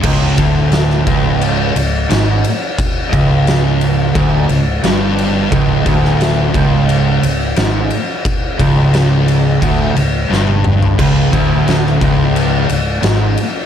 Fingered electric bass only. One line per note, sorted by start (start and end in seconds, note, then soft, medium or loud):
0.03 0.36 C#1 medium
0.38 1.03 D1 loud
1.07 1.72 C#1 loud
1.75 2.07 C#1 medium
2.10 2.42 G#1 loud
3.13 4.11 C#1 loud
4.16 4.47 D1 medium
4.50 4.81 C#1 medium
4.84 5.48 G1 loud
5.52 5.84 C#1 loud
5.86 6.50 D1 loud
6.55 7.19 C#1 loud
7.23 7.54 C#1 medium
7.57 7.89 G#1 loud
8.59 9.58 C#1 loud
9.62 9.93 D1 loud
9.96 10.27 C#1 medium
10.30 10.94 G1 medium
10.99 11.30 C#1 medium
11.33 11.97 D1 loud
12.02 12.65 C#1 loud
12.70 13.01 C#1 medium
13.03 13.35 G#1 loud